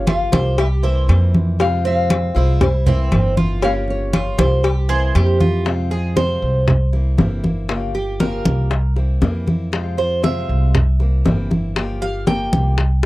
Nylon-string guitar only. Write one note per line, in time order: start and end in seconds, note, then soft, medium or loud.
0.08 0.55 F5 medium
0.59 0.66 E5 loud
0.84 1.60 E5 medium
1.61 1.86 F5 loud
1.87 2.38 F5 loud
2.37 2.62 C5 medium
2.63 2.86 C5 medium
2.88 3.59 E5 medium
3.64 3.71 F5 loud
3.90 4.40 C#5 medium
4.41 5.37 C5 medium